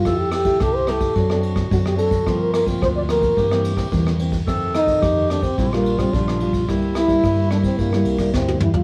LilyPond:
<<
  \new Staff \with { instrumentName = "Clarinet" } { \time 4/4 \key f \major \tempo 4 = 109 a'4 g'4 fis'2 | f'2 g'4. r8 | a'4 g'4 f'2 | e'2.~ e'8 r8 | }
  \new Staff \with { instrumentName = "Trombone" } { \time 4/4 \key f \major f'16 g'16 g'8 a'16 c''16 a'4 r8 fis'16 g'16 a'8~ | a'16 bes'16 bes'8 c''16 d''16 bes'4 r4. | r8 ees'4 d'16 c'8 bes8 c'16 d'8. r16 | r8 e'4 d'16 c'16 bes4 c'8 e'16 f'16 | }
  \new Staff \with { instrumentName = "Nylon-string guitar" } { \time 4/4 \key f \major << { <a e' g'>8. <a e' g'>8. <a e' g'>8 <c' d' a'>16 <c' d' a'>8. <c' d' a'>16 r16 <c' d' a'>16 r16 | <f bes c'>8. <f bes c'>8. <f bes c'>8 <e bes c'>16 <e bes c'>8 <e bes c'>16 <e bes c'>8 <e bes c'>16 r16 | <ees a c'>8. <ees a c'>8. <ees a c'>16 r16 <g d' f'>16 <g d' f'>8 <g d' f'>16 <g d' f'>8 <g d' f'>8 | <g bes e'>8. <g bes e'>8. <g bes e'>16 r16 <g bes e'>16 <g bes e'>8 <g bes e'>16 <g bes e'>8. r16 | } \\ { f4 c4 fis4 fis4 | g,4 d4 g,4 g,4 | f,4 c4 bes,4 f4 | c4 g,4 c4 g,4 | } >> }
  \new Staff \with { instrumentName = "Fingered electric bass" } { \clef bass \time 4/4 \key f \major f,4 c,4 fis,4 fis,4 | g,4 d,4 g,4 e,4 | f,4 f,4 bes,,4 bes,,4 | c,4 g,4 g,8 c,8 d,8 e,8 | }
  \new DrumStaff \with { instrumentName = "Drums" } \drummode { \time 4/4 <bd cymr ss>8 <cymr ss>16 <bd cymr>16 <bd cymr ss>8 <cymr ss>16 <bd cymr>16 <bd cymr>16 ss16 cymr16 <bd cymr ss>16 <bd cymr>16 ss16 cymr16 <bd cymr>16 | <bd cymr ss>8 <cymr ss>16 <bd cymr>16 <bd cymr ss>8 <cymr ss>16 <bd cymr>16 <bd cymr>16 ss16 cymr16 <bd cymr ss>16 <bd cymr>16 ss16 cymr16 <bd cymr>16 | <bd cymr ss>8 <cymr ss>16 <bd cymr>16 <bd cymr ss>8 <cymr ss>16 <bd cymr>16 <bd cymr>16 ss16 cymr16 <bd cymr ss>16 <bd cymr>16 ss16 cymr16 <bd cymr>16 | <bd cymr ss>8 <cymr ss>16 <bd cymr>16 <bd cymr ss>8 <cymr ss>16 <bd cymr>16 <bd cymr>16 ss16 cymr16 <bd cymr ss>16 <bd sn>16 tommh16 toml16 tomfh16 | }
>>